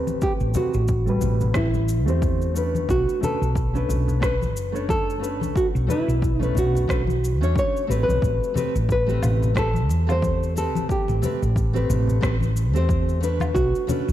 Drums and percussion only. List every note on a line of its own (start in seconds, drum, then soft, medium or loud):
0.07 high conga medium
0.07 shaker soft
0.22 kick loud
0.22 shaker soft
0.40 shaker soft
0.54 high conga medium
0.54 low conga medium
0.54 shaker medium
0.74 shaker soft
0.88 kick loud
0.88 shaker soft
1.07 high conga medium
1.07 shaker soft
1.21 low conga medium
1.21 shaker medium
1.41 low conga medium
1.41 shaker soft
1.54 kick loud
1.54 cross-stick medium
1.54 shaker soft
1.74 high conga medium
1.74 shaker soft
1.89 shaker medium
2.08 shaker soft
2.22 kick loud
2.22 high conga medium
2.22 shaker soft
2.42 shaker soft
2.56 shaker medium
2.75 high conga medium
2.75 shaker soft
2.89 kick loud
2.89 shaker soft
3.09 shaker soft
3.23 high conga medium
3.23 low conga medium
3.23 shaker medium
3.43 shaker soft
3.55 kick loud
3.55 shaker soft
3.75 high conga medium
3.75 shaker soft
3.89 low conga medium
3.89 shaker medium
4.08 low conga medium
4.08 shaker soft
4.22 kick loud
4.22 cross-stick medium
4.22 shaker soft
4.41 high conga medium
4.41 shaker soft
4.57 shaker medium
4.76 shaker soft
4.89 kick loud
4.89 high conga medium
4.89 shaker soft
5.10 shaker soft
5.24 shaker medium
5.41 high conga medium
5.41 shaker soft
5.56 kick loud
5.56 shaker soft
5.76 shaker soft
5.89 high conga medium
5.89 low conga medium
5.89 shaker medium
6.09 shaker soft
6.22 kick loud
6.22 shaker soft
6.41 high conga medium
6.41 shaker soft
6.55 low conga medium
6.55 shaker medium
6.75 low conga medium
6.75 shaker soft
6.89 kick loud
6.89 cross-stick medium
6.89 shaker soft
7.07 high conga medium
7.07 shaker soft
7.25 shaker medium
7.43 shaker soft
7.56 kick loud
7.56 high conga medium
7.56 shaker soft
7.77 shaker soft
7.91 shaker medium
8.09 high conga medium
8.09 shaker soft
8.22 kick loud
8.22 shaker soft
8.44 shaker soft
8.56 high conga medium
8.56 low conga medium
8.56 shaker medium
8.76 shaker soft
8.89 kick medium
8.89 shaker soft
9.09 high conga medium
9.09 shaker soft
9.23 low conga medium
9.23 low woodblock medium
9.23 shaker medium
9.42 low conga medium
9.42 shaker soft
9.56 kick loud
9.56 cross-stick medium
9.56 shaker soft
9.74 high conga medium
9.74 shaker soft
9.89 muted conga medium
9.89 shaker medium
10.09 low woodblock medium
10.09 shaker soft
10.22 kick loud
10.22 high conga medium
10.22 shaker soft
10.43 shaker soft
10.57 shaker medium
10.75 high conga medium
10.75 shaker soft
10.89 kick medium
10.89 shaker soft
11.08 muted conga medium
11.08 shaker soft
11.22 high conga medium
11.22 low conga medium
11.22 shaker medium
11.43 shaker soft
11.56 kick medium
11.56 shaker soft
11.76 high conga medium
11.76 shaker soft
11.90 low conga medium
11.90 shaker medium
12.07 low conga medium
12.07 shaker soft
12.23 kick loud
12.23 cross-stick medium
12.23 shaker soft
12.41 high conga medium
12.41 shaker soft
12.57 shaker medium
12.76 shaker soft
12.89 kick loud
12.89 high conga medium
12.89 shaker soft
13.09 shaker soft
13.23 shaker medium
13.40 muted conga medium
13.40 high conga medium
13.40 low woodblock medium
13.40 shaker soft
13.55 kick loud
13.55 shaker soft
13.75 shaker soft
13.88 high conga medium
13.88 low conga medium
13.88 shaker medium
14.09 shaker soft